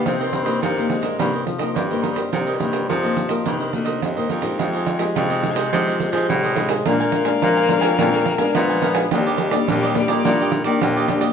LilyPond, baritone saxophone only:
\new Staff \with { instrumentName = "Baritone saxophone" } { \clef bass \time 4/4 \key c \minor \tempo 4 = 106 c8 g,8 c4 g,8 r8 g,4 | c8 g,8 c4 g,8 d,8 ees,8 f,8 | f,4 f,8. c16 c8. f16 a,4 | bes,4 bes,8. f,16 f,8. r16 bes,4 |
ees,4 ees,8. bes,16 bes,8. ees16 ees,4 | }